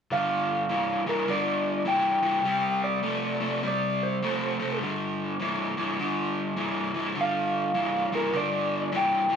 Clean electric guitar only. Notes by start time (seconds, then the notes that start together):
0.12 F5
1.09 A#4
1.30 D5
1.88 G5
2.84 D5
3.67 D5
4.03 C5
7.21 F5
8.15 A#4
8.36 D5
8.97 G5